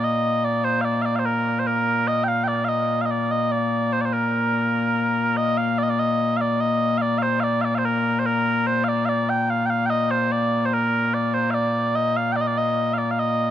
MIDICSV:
0, 0, Header, 1, 2, 480
1, 0, Start_track
1, 0, Key_signature, -2, "major"
1, 0, Tempo, 821918
1, 500, Time_signature, 2, 2, 24, 8
1, 7888, End_track
2, 0, Start_track
2, 0, Title_t, "Bagpipes"
2, 0, Program_c, 0, 109
2, 0, Note_on_c, 0, 46, 89
2, 0, Note_on_c, 0, 58, 89
2, 23, Note_on_c, 0, 75, 87
2, 260, Note_off_c, 0, 75, 0
2, 260, Note_on_c, 0, 74, 92
2, 376, Note_off_c, 0, 74, 0
2, 376, Note_on_c, 0, 72, 83
2, 474, Note_off_c, 0, 72, 0
2, 474, Note_on_c, 0, 77, 91
2, 494, Note_off_c, 0, 77, 0
2, 494, Note_on_c, 0, 74, 91
2, 595, Note_off_c, 0, 74, 0
2, 595, Note_on_c, 0, 77, 84
2, 615, Note_off_c, 0, 77, 0
2, 615, Note_on_c, 0, 74, 84
2, 676, Note_off_c, 0, 74, 0
2, 676, Note_on_c, 0, 77, 60
2, 695, Note_off_c, 0, 77, 0
2, 695, Note_on_c, 0, 72, 60
2, 734, Note_off_c, 0, 72, 0
2, 734, Note_on_c, 0, 70, 77
2, 931, Note_off_c, 0, 70, 0
2, 931, Note_on_c, 0, 72, 57
2, 975, Note_off_c, 0, 72, 0
2, 975, Note_on_c, 0, 70, 86
2, 1213, Note_off_c, 0, 70, 0
2, 1213, Note_on_c, 0, 75, 96
2, 1307, Note_off_c, 0, 75, 0
2, 1307, Note_on_c, 0, 79, 90
2, 1332, Note_off_c, 0, 79, 0
2, 1332, Note_on_c, 0, 77, 90
2, 1423, Note_off_c, 0, 77, 0
2, 1423, Note_on_c, 0, 79, 91
2, 1447, Note_off_c, 0, 79, 0
2, 1447, Note_on_c, 0, 74, 91
2, 1545, Note_off_c, 0, 74, 0
2, 1545, Note_on_c, 0, 77, 80
2, 1568, Note_off_c, 0, 77, 0
2, 1568, Note_on_c, 0, 75, 80
2, 1759, Note_off_c, 0, 75, 0
2, 1760, Note_on_c, 0, 77, 58
2, 1784, Note_off_c, 0, 77, 0
2, 1784, Note_on_c, 0, 75, 58
2, 1814, Note_off_c, 0, 75, 0
2, 1814, Note_on_c, 0, 74, 83
2, 1934, Note_off_c, 0, 74, 0
2, 1934, Note_on_c, 0, 75, 81
2, 2053, Note_off_c, 0, 75, 0
2, 2053, Note_on_c, 0, 74, 79
2, 2293, Note_off_c, 0, 74, 0
2, 2293, Note_on_c, 0, 72, 81
2, 2342, Note_off_c, 0, 72, 0
2, 2342, Note_on_c, 0, 74, 54
2, 2367, Note_off_c, 0, 74, 0
2, 2367, Note_on_c, 0, 72, 54
2, 2413, Note_off_c, 0, 72, 0
2, 2413, Note_on_c, 0, 70, 71
2, 3135, Note_off_c, 0, 70, 0
2, 3135, Note_on_c, 0, 75, 98
2, 3255, Note_off_c, 0, 75, 0
2, 3255, Note_on_c, 0, 77, 88
2, 3378, Note_off_c, 0, 77, 0
2, 3378, Note_on_c, 0, 74, 96
2, 3404, Note_off_c, 0, 74, 0
2, 3404, Note_on_c, 0, 75, 76
2, 3444, Note_off_c, 0, 75, 0
2, 3444, Note_on_c, 0, 74, 92
2, 3499, Note_off_c, 0, 74, 0
2, 3499, Note_on_c, 0, 75, 87
2, 3719, Note_off_c, 0, 75, 0
2, 3719, Note_on_c, 0, 77, 87
2, 3744, Note_off_c, 0, 77, 0
2, 3744, Note_on_c, 0, 74, 87
2, 3857, Note_off_c, 0, 74, 0
2, 3857, Note_on_c, 0, 75, 94
2, 4075, Note_off_c, 0, 75, 0
2, 4075, Note_on_c, 0, 77, 95
2, 4098, Note_off_c, 0, 77, 0
2, 4098, Note_on_c, 0, 74, 95
2, 4195, Note_off_c, 0, 74, 0
2, 4195, Note_on_c, 0, 77, 91
2, 4219, Note_off_c, 0, 77, 0
2, 4219, Note_on_c, 0, 72, 91
2, 4322, Note_off_c, 0, 72, 0
2, 4322, Note_on_c, 0, 77, 96
2, 4341, Note_off_c, 0, 77, 0
2, 4341, Note_on_c, 0, 74, 96
2, 4446, Note_off_c, 0, 74, 0
2, 4446, Note_on_c, 0, 77, 87
2, 4465, Note_off_c, 0, 77, 0
2, 4465, Note_on_c, 0, 74, 87
2, 4526, Note_off_c, 0, 74, 0
2, 4526, Note_on_c, 0, 77, 64
2, 4545, Note_off_c, 0, 77, 0
2, 4545, Note_on_c, 0, 72, 64
2, 4586, Note_off_c, 0, 72, 0
2, 4586, Note_on_c, 0, 70, 82
2, 4785, Note_off_c, 0, 70, 0
2, 4785, Note_on_c, 0, 72, 63
2, 4824, Note_off_c, 0, 72, 0
2, 4824, Note_on_c, 0, 70, 90
2, 5063, Note_off_c, 0, 70, 0
2, 5063, Note_on_c, 0, 72, 97
2, 5163, Note_off_c, 0, 72, 0
2, 5163, Note_on_c, 0, 77, 94
2, 5188, Note_off_c, 0, 77, 0
2, 5188, Note_on_c, 0, 74, 94
2, 5288, Note_off_c, 0, 74, 0
2, 5288, Note_on_c, 0, 77, 99
2, 5308, Note_off_c, 0, 77, 0
2, 5308, Note_on_c, 0, 74, 99
2, 5428, Note_off_c, 0, 74, 0
2, 5428, Note_on_c, 0, 79, 98
2, 5549, Note_off_c, 0, 79, 0
2, 5549, Note_on_c, 0, 77, 90
2, 5640, Note_off_c, 0, 77, 0
2, 5640, Note_on_c, 0, 79, 93
2, 5665, Note_off_c, 0, 79, 0
2, 5665, Note_on_c, 0, 77, 93
2, 5757, Note_off_c, 0, 77, 0
2, 5757, Note_on_c, 0, 79, 99
2, 5781, Note_off_c, 0, 79, 0
2, 5781, Note_on_c, 0, 75, 99
2, 5903, Note_off_c, 0, 75, 0
2, 5903, Note_on_c, 0, 72, 88
2, 6026, Note_off_c, 0, 72, 0
2, 6026, Note_on_c, 0, 74, 98
2, 6223, Note_off_c, 0, 74, 0
2, 6223, Note_on_c, 0, 72, 72
2, 6271, Note_off_c, 0, 72, 0
2, 6271, Note_on_c, 0, 70, 92
2, 6506, Note_off_c, 0, 70, 0
2, 6506, Note_on_c, 0, 74, 81
2, 6622, Note_off_c, 0, 74, 0
2, 6622, Note_on_c, 0, 72, 80
2, 6720, Note_off_c, 0, 72, 0
2, 6720, Note_on_c, 0, 77, 93
2, 6740, Note_off_c, 0, 77, 0
2, 6740, Note_on_c, 0, 74, 93
2, 6980, Note_off_c, 0, 74, 0
2, 6980, Note_on_c, 0, 75, 101
2, 7104, Note_off_c, 0, 75, 0
2, 7104, Note_on_c, 0, 77, 98
2, 7196, Note_off_c, 0, 77, 0
2, 7196, Note_on_c, 0, 79, 93
2, 7219, Note_off_c, 0, 79, 0
2, 7219, Note_on_c, 0, 74, 93
2, 7247, Note_off_c, 0, 74, 0
2, 7247, Note_on_c, 0, 75, 78
2, 7283, Note_off_c, 0, 75, 0
2, 7283, Note_on_c, 0, 74, 98
2, 7344, Note_off_c, 0, 74, 0
2, 7344, Note_on_c, 0, 75, 87
2, 7555, Note_off_c, 0, 75, 0
2, 7555, Note_on_c, 0, 77, 78
2, 7581, Note_off_c, 0, 77, 0
2, 7581, Note_on_c, 0, 74, 78
2, 7656, Note_off_c, 0, 74, 0
2, 7656, Note_on_c, 0, 77, 67
2, 7704, Note_off_c, 0, 77, 0
2, 7704, Note_on_c, 0, 75, 89
2, 7887, Note_off_c, 0, 75, 0
2, 7888, Note_off_c, 0, 46, 0
2, 7888, Note_off_c, 0, 58, 0
2, 7888, End_track
0, 0, End_of_file